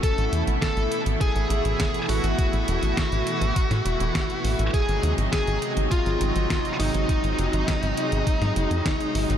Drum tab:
HH |xxxxxxxxxxxxxxox|xxxxxxxxxxxxxxox|xxxxxxxxxxxxxxox|xxxxxxxxxxxxxxox|
SD |----o-------o---|----o----o--o---|----o-------o---|----o----o--o---|
BD |o---o---o---o---|o---o---o---o---|o---o---o---o---|o---o---o---o---|